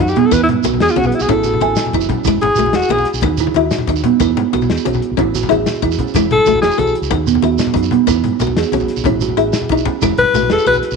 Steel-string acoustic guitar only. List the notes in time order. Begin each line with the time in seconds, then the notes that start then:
Already playing: D#4
0.31 B3
0.65 B3
0.96 C#4
1.29 C#4
1.61 E4
1.94 D#4
2.27 G#3
2.59 A3
2.90 B3
3.23 B3
3.56 E4
3.89 D#4
4.20 B3
4.53 B3
4.85 C#4
5.17 C#4
5.49 E4
5.82 D#4
6.16 G#3
6.47 A3
6.78 B3
7.11 B3
7.43 E4
7.74 D#4
8.07 B3
8.41 B3
8.73 C#4
9.06 C#4
9.37 E4
9.72 D#4
10.03 G#3
10.35 A3
10.66 B3